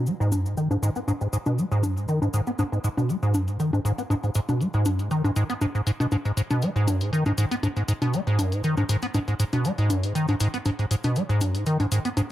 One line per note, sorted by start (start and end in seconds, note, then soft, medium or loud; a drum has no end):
0.06 0.14 G#3 medium
0.06 closed hi-hat soft
0.06 cabasa soft
0.20 0.34 G#2 loud
0.20 closed hi-hat soft
0.20 cabasa soft
0.32 0.47 F#2 medium
0.32 closed hi-hat medium
0.32 high conga medium
0.32 cabasa medium
0.45 0.55 G#2 medium
0.45 closed hi-hat medium
0.45 cabasa soft
0.57 0.68 D#3 medium
0.57 closed hi-hat soft
0.57 cabasa soft
0.71 0.77 G#2 medium
0.71 closed hi-hat soft
0.71 high conga medium
0.71 cabasa soft
0.82 0.90 G#2 loud
0.82 closed hi-hat medium
0.82 cabasa medium
0.96 1.00 B3 medium
0.96 closed hi-hat medium
0.96 cabasa soft
1.08 1.12 G#2 loud
1.08 closed hi-hat soft
1.08 high conga medium
1.08 cabasa medium
1.21 1.28 G#2 medium
1.21 closed hi-hat soft
1.21 cabasa soft
1.33 1.37 G#2 loud
1.33 closed hi-hat medium
1.33 cabasa medium
1.46 1.60 B2 medium
1.46 closed hi-hat soft
1.46 high conga medium
1.46 cabasa soft
1.58 1.65 G#3 medium
1.58 closed hi-hat soft
1.58 cabasa soft
1.71 1.85 G#2 loud
1.71 closed hi-hat soft
1.71 cabasa soft
1.83 1.98 F#2 medium
1.83 closed hi-hat medium
1.83 high conga medium
1.83 cabasa medium
1.97 2.06 G#2 medium
1.97 closed hi-hat soft
1.97 cabasa soft
2.08 2.20 D#3 medium
2.08 closed hi-hat soft
2.08 cabasa soft
2.22 2.28 G#2 medium
2.22 closed hi-hat soft
2.22 high conga medium
2.22 cabasa soft
2.33 2.41 G#2 loud
2.33 closed hi-hat medium
2.33 cabasa medium
2.47 2.51 B3 medium
2.47 closed hi-hat soft
2.47 cabasa soft
2.59 2.63 G#2 loud
2.59 closed hi-hat soft
2.59 high conga medium
2.59 cabasa soft
2.72 2.79 G#2 medium
2.72 closed hi-hat soft
2.72 cabasa soft
2.84 2.89 G#2 loud
2.84 closed hi-hat medium
2.84 cabasa medium
2.97 3.11 B2 medium
2.97 closed hi-hat soft
2.97 high conga medium
2.97 cabasa soft
3.09 3.17 G#3 medium
3.09 closed hi-hat soft
3.09 cabasa soft
3.23 3.36 G#2 medium
3.23 closed hi-hat soft
3.23 cabasa soft
3.34 3.49 F#2 medium
3.34 closed hi-hat medium
3.34 high conga medium
3.34 cabasa medium
3.48 3.58 G#2 medium
3.48 closed hi-hat soft
3.48 cabasa soft
3.60 3.71 D#3 medium
3.60 closed hi-hat soft
3.60 cabasa medium
3.73 3.80 G#2 medium
3.73 closed hi-hat soft
3.73 high conga medium
3.73 cabasa soft
3.85 3.92 G#2 loud
3.85 closed hi-hat medium
3.85 cabasa medium
3.98 4.02 B3 medium
3.98 closed hi-hat soft
3.98 cabasa soft
4.10 4.15 G#2 loud
4.10 closed hi-hat soft
4.10 high conga medium
4.10 cabasa soft
4.23 4.30 G#2 medium
4.23 closed hi-hat soft
4.23 cabasa soft
4.34 4.40 G#2 loud
4.34 closed hi-hat medium
4.34 cabasa medium
4.49 4.62 B2 medium
4.49 closed hi-hat soft
4.49 high conga medium
4.49 cabasa soft
4.61 4.68 G#3 medium
4.61 closed hi-hat soft
4.61 cabasa medium
4.73 4.87 G#2 loud
4.73 closed hi-hat soft
4.73 cabasa soft
4.85 5.01 F#2 medium
4.85 closed hi-hat medium
4.85 high conga medium
4.85 cabasa medium
4.99 5.09 G#2 medium
4.99 closed hi-hat soft
4.99 cabasa soft
5.11 5.22 D#3 medium
5.11 closed hi-hat soft
5.11 cabasa soft
5.24 5.31 G#2 medium
5.24 closed hi-hat soft
5.24 high conga medium
5.24 cabasa soft
5.36 5.44 G#2 loud
5.36 closed hi-hat medium
5.36 cabasa medium
5.50 5.54 B3 medium
5.50 closed hi-hat soft
5.50 cabasa soft
5.61 5.66 G#2 loud
5.61 closed hi-hat soft
5.61 high conga medium
5.61 cabasa medium
5.75 5.81 G#2 medium
5.75 closed hi-hat soft
5.75 cabasa soft
5.87 5.91 G#2 loud
5.87 closed hi-hat medium
5.87 cabasa medium
6.00 6.07 B2 medium
6.00 closed hi-hat soft
6.00 high conga medium
6.00 cabasa soft
6.11 6.16 G#2 loud
6.11 closed hi-hat soft
6.11 high conga medium
6.11 cabasa medium
6.25 6.32 G#2 medium
6.25 closed hi-hat soft
6.25 cabasa soft
6.37 6.41 G#2 loud
6.37 closed hi-hat medium
6.37 cabasa medium
6.50 6.64 B2 medium
6.50 closed hi-hat soft
6.50 high conga medium
6.50 cabasa soft
6.62 6.70 G#3 medium
6.62 closed hi-hat soft
6.62 cabasa soft
6.76 6.89 G#2 loud
6.76 closed hi-hat soft
6.76 cabasa soft
6.87 7.02 F#2 medium
6.87 closed hi-hat medium
6.87 high conga medium
6.87 cabasa medium
7.01 7.11 G#2 medium
7.01 closed hi-hat soft
7.01 cabasa soft
7.13 7.24 D#3 medium
7.13 closed hi-hat soft
7.13 cabasa medium
7.26 7.33 G#2 medium
7.26 closed hi-hat soft
7.26 high conga medium
7.26 cabasa soft
7.38 7.45 G#2 loud
7.38 closed hi-hat medium
7.38 cabasa medium
7.51 7.55 B3 medium
7.51 closed hi-hat soft
7.51 cabasa soft
7.63 7.68 G#2 loud
7.63 closed hi-hat soft
7.63 high conga medium
7.63 cabasa medium
7.76 7.83 G#2 medium
7.76 closed hi-hat soft
7.76 cabasa soft
7.88 7.93 G#2 loud
7.88 closed hi-hat medium
7.88 cabasa medium
8.02 8.15 B2 medium
8.02 closed hi-hat soft
8.02 high conga medium
8.02 cabasa soft
8.13 8.21 G#3 medium
8.13 closed hi-hat soft
8.13 cabasa soft
8.27 8.40 G#2 medium
8.27 closed hi-hat soft
8.27 cabasa soft
8.39 8.54 F#2 medium
8.39 closed hi-hat medium
8.39 high conga medium
8.39 cabasa medium
8.52 8.62 G#2 medium
8.52 closed hi-hat soft
8.52 cabasa soft
8.64 8.75 D#3 medium
8.64 closed hi-hat soft
8.64 cabasa soft
8.77 8.84 G#2 medium
8.77 closed hi-hat soft
8.77 high conga medium
8.77 cabasa soft
8.89 8.97 G#2 loud
8.89 closed hi-hat medium
8.89 cabasa medium
9.02 9.06 B3 medium
9.02 closed hi-hat medium
9.02 cabasa soft
9.14 9.19 G#2 loud
9.14 closed hi-hat soft
9.14 high conga medium
9.14 cabasa medium
9.28 9.34 G#2 medium
9.28 closed hi-hat soft
9.28 cabasa soft
9.39 9.44 G#2 loud
9.39 closed hi-hat medium
9.39 cabasa medium
9.53 9.66 B2 medium
9.53 closed hi-hat medium
9.53 high conga medium
9.53 cabasa soft
9.65 9.72 G#3 medium
9.65 closed hi-hat soft
9.65 cabasa soft
9.78 9.92 G#2 medium
9.78 closed hi-hat soft
9.78 cabasa soft
9.90 10.05 F#2 medium
9.90 closed hi-hat medium
9.90 high conga medium
9.90 cabasa medium
10.03 10.13 G#2 medium
10.03 closed hi-hat soft
10.03 cabasa soft
10.15 10.26 D#3 medium
10.15 closed hi-hat medium
10.15 cabasa medium
10.28 10.35 G#2 medium
10.28 closed hi-hat soft
10.28 high conga medium
10.28 cabasa soft
10.40 10.48 G#2 loud
10.40 closed hi-hat medium
10.40 cabasa medium
10.54 10.58 B3 medium
10.54 closed hi-hat medium
10.54 cabasa soft
10.65 10.70 G#2 loud
10.65 closed hi-hat medium
10.65 high conga medium
10.65 cabasa soft
10.79 10.86 G#2 medium
10.79 closed hi-hat soft
10.79 cabasa soft
10.91 10.95 G#2 loud
10.91 closed hi-hat medium
10.91 cabasa medium
11.04 11.18 B2 medium
11.04 closed hi-hat medium
11.04 high conga medium
11.04 cabasa soft
11.16 11.23 G#3 medium
11.16 closed hi-hat soft
11.16 cabasa soft
11.29 11.43 G#2 loud
11.29 closed hi-hat soft
11.29 cabasa soft
11.41 11.56 F#2 medium
11.41 closed hi-hat medium
11.41 high conga medium
11.41 cabasa medium
11.55 11.64 G#2 medium
11.55 closed hi-hat medium
11.55 cabasa soft
11.66 11.78 D#3 medium
11.66 closed hi-hat medium
11.66 cabasa soft
11.80 11.86 G#2 medium
11.80 closed hi-hat soft
11.80 high conga medium
11.80 cabasa soft
11.92 11.99 G#2 loud
11.92 closed hi-hat medium
11.92 cabasa medium
12.05 12.09 B3 medium
12.05 closed hi-hat medium
12.05 cabasa soft
12.17 12.21 G#2 loud
12.17 closed hi-hat medium
12.17 high conga medium
12.17 cabasa medium